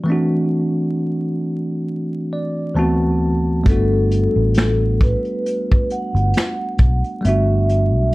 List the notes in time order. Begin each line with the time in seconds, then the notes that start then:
0.04 E3 A3
0.08 C4 D4 F#4
2.33 D5
2.74 D2 E3 A3 B3 C4 A5
2.79 F#4
3.64 G1 G3 A3 B3, kick, closed hi-hat
3.68 D4 F#4 A4
4.11 closed hi-hat
4.36 A1
4.54 snare, closed hi-hat
4.58 finger snap
5.01 B4, kick, closed hi-hat
5.25 closed hi-hat
5.46 closed hi-hat
5.72 kick
5.90 F#5, closed hi-hat
6.14 G1, closed hi-hat
6.34 snare, closed hi-hat
6.38 finger snap
6.78 B1, kick, closed hi-hat
7.04 closed hi-hat
7.21 G1 G3 A3 B3, closed hi-hat
7.25 D4 F#4 E5
7.69 closed hi-hat
7.94 B1